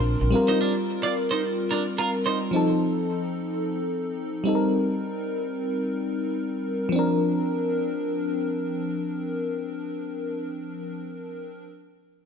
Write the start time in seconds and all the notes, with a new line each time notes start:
Already playing: A#1 F3 C4 D4 A#4
0.21 A#1
0.30 G3 C4 F4
0.35 A#4
0.48 D#4 C5
0.61 D4 A#4
1.03 F4 D5
1.31 D#4 C5
1.71 D4 A#4
1.98 F4 A#4
2.26 D#4 C5
2.51 F3 C4 D#4
2.56 A4
4.44 G3 C4 D#4
4.49 A4
4.55 A#4
6.89 F3 C4
6.96 D4 A#4